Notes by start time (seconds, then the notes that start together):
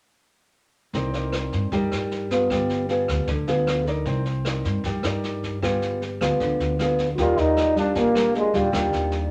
0.93 C2 C4 D#4 A#4 D5, kick, snare
1.14 D#4 A#4 D5, snare
1.32 cross-stick, snare
1.52 G2, kick, snare
1.72 G2 G3 D#4 A#4 D5, kick, snare
1.92 G2, cross-stick, snare
2.11 snare
2.31 B3 F4, kick, snare
2.50 G1 G3, kick, cross-stick, snare
2.69 snare
2.89 B3 F4 G#4, snare
3.08 D2, kick, cross-stick, snare
3.27 D2 D3, kick, snare
3.47 D2 B3 F4 G#4, snare
3.67 cross-stick, snare
3.86 D#4 A#4 D5, kick, snare
4.06 C2 C4, kick, snare
4.25 snare
4.45 D#4 A#4 D5, cross-stick, snare
4.64 G2, kick, snare
4.84 G2 G3, kick, snare
5.03 G2 D#4 A#4 D5, cross-stick, snare
5.24 snare
5.43 kick, snare
5.62 G1 G3 B3 F4 G#4, kick, cross-stick, snare
5.82 snare
6.02 snare
6.21 D2 B3 F4 G#4, kick, cross-stick, snare
6.40 D2 D3, kick, snare
6.59 D2, snare
6.79 B3 F4 G#4, cross-stick, snare
6.99 kick, snare
7.15 D#2 D#3 F4 G4, kick, snare
7.20 G3 F4 A#4 D5
7.37 D#2 D#4, snare
7.57 cross-stick, snare
7.76 G3 D4 F4, kick, snare
7.95 A#1 A#2 A#3, kick, snare
8.14 G3 D4 F4, cross-stick, snare
8.35 G#3, snare
8.53 D#2 G3 D4 F4, kick, snare
8.72 D#2 D#3 G3 D4 F4, kick, cross-stick, snare
8.93 D#2, snare
9.11 snare